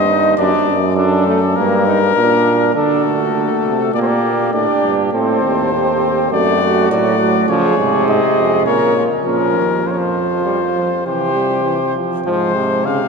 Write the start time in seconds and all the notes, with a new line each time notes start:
Already playing: G2 D#5
0.07 D#4
0.37 F#2 D4 D5
0.68 F#2
0.97 D4 A4
1.26 A3
1.56 G2 A#3 A#4
1.86 D#4
2.15 A#2 D4
2.75 D3 D4 F#4 A4
3.05 A3
3.35 D3
3.64 C3
3.94 A#2 A#3 G4 D5
4.02 C5
4.07 D5
4.53 A2 D4 G4 D5
4.82 G2
5.12 A2 C4 A4 C5
5.42 D#2
5.73 C4 G4
6.30 F#2 A3 F#4 D5
6.62 A3
6.90 A2 F#3 D5
7.19 F#3
7.48 C#3 F3 G#4 C#5
7.77 G#2 C3
8.07 G#2 D#5
8.36 F2
8.66 A#2 C#3 A#4 C#5
8.96 F4
9.25 A#2 F3 C#4 A#4
9.56 D#2
9.85 F2 F3 F4 C5
9.91 C#5
9.98 C5
10.45 G3
10.76 F3
11.06 C3 E3 G4 C5
11.35 G3
11.64 E3
11.96 F3
12.24 G#2 F3 C5
12.56 C3
12.86 C#3 F5